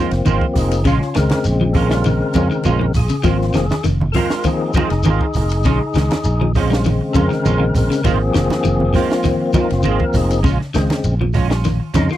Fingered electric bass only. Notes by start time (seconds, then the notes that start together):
0.12 F1
0.26 G#1
0.56 F1
0.86 A#1
1.18 C#2
1.47 A#1
2.35 F2
2.68 A#1
2.95 A#1
3.25 G#1
3.56 F1
3.86 F1
4.91 F1
5.07 G#1
5.35 F1
5.65 A#1
5.96 C#2
6.26 A#1
7.15 F2
7.46 A#1
7.75 A#1
8.05 G#1
8.36 F1
8.66 F1
9.72 F1
9.85 G#1
10.14 F1
10.44 A#1
10.76 C#2
11.05 A#1
11.95 F2